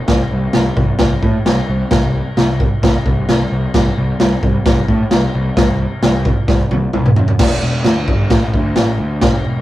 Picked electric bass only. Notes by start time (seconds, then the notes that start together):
0.08 C2
0.32 C2
0.55 C2
0.77 C2
1.00 C2
1.23 A2
1.45 C2
1.68 C2
1.91 C2
2.37 C2
2.83 C2
3.06 C2
3.29 C2
3.51 C2
3.74 C2
3.97 C2
4.20 C2
4.43 C2
4.65 C2
4.88 A2
5.11 C2
5.34 C2
5.57 C2
6.02 C2
6.48 C2
6.71 C2
6.94 C2
7.17 F#2
7.40 E1
7.62 E1
7.85 D2
8.08 G1
8.31 A1
8.53 D2
8.77 A1
8.99 D2
9.22 E1
9.45 E1